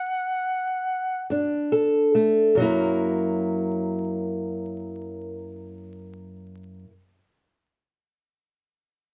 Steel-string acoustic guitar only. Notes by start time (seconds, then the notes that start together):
1.30 G2 D4
1.72 A4
2.15 A3
2.55 F#2 F#3
2.60 A#3 E4 A#4